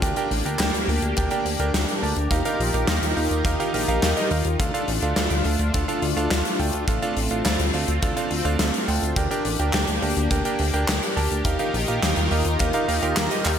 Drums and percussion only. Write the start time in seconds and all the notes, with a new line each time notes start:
0.02 kick, closed hi-hat
0.16 closed hi-hat
0.31 open hi-hat
0.46 closed hi-hat
0.59 snare, clap, closed hi-hat
0.74 closed hi-hat
0.89 open hi-hat
1.02 closed hi-hat
1.17 kick, closed hi-hat
1.31 closed hi-hat
1.46 open hi-hat
1.60 closed hi-hat
1.74 snare, clap, closed hi-hat
1.88 closed hi-hat
2.03 open hi-hat
2.16 closed hi-hat
2.31 kick, closed hi-hat
2.45 closed hi-hat
2.60 open hi-hat
2.74 closed hi-hat
2.88 snare, clap, closed hi-hat
3.03 closed hi-hat
3.17 open hi-hat
3.31 closed hi-hat
3.45 kick, closed hi-hat
3.60 closed hi-hat
3.74 open hi-hat
3.89 closed hi-hat
4.03 snare, clap, closed hi-hat
4.17 closed hi-hat
4.31 open hi-hat
4.45 closed hi-hat
4.60 kick, closed hi-hat
4.75 closed hi-hat
4.88 open hi-hat
5.02 closed hi-hat
5.16 snare, clap, closed hi-hat
5.30 closed hi-hat
5.44 open hi-hat
5.59 closed hi-hat
5.74 kick, closed hi-hat
5.89 closed hi-hat
6.02 open hi-hat
6.17 closed hi-hat
6.31 snare, clap, closed hi-hat
6.45 closed hi-hat
6.59 open hi-hat
6.73 closed hi-hat
6.88 kick, closed hi-hat
7.02 closed hi-hat
7.17 open hi-hat
7.31 closed hi-hat
7.45 snare, clap, closed hi-hat
7.59 closed hi-hat
7.74 open hi-hat
7.88 closed hi-hat
8.02 kick, closed hi-hat
8.17 closed hi-hat
8.31 open hi-hat
8.45 closed hi-hat
8.59 snare, clap, closed hi-hat
8.74 closed hi-hat
8.88 open hi-hat
9.03 closed hi-hat
9.16 kick, closed hi-hat
9.31 closed hi-hat
9.45 open hi-hat
9.60 closed hi-hat
9.73 snare, clap, closed hi-hat
9.87 closed hi-hat
10.02 open hi-hat
10.17 closed hi-hat
10.31 kick, closed hi-hat
10.45 closed hi-hat
10.59 open hi-hat
10.74 closed hi-hat
10.88 snare, clap, closed hi-hat
11.03 closed hi-hat
11.17 open hi-hat
11.32 closed hi-hat
11.45 kick, closed hi-hat
11.59 closed hi-hat
11.74 open hi-hat
11.88 closed hi-hat
12.03 snare, clap, closed hi-hat
12.16 closed hi-hat
12.31 open hi-hat
12.45 closed hi-hat
12.59 kick, closed hi-hat
12.73 closed hi-hat
12.89 open hi-hat
13.03 closed hi-hat
13.16 snare, clap, closed hi-hat
13.31 closed hi-hat
13.45 clap, open hi-hat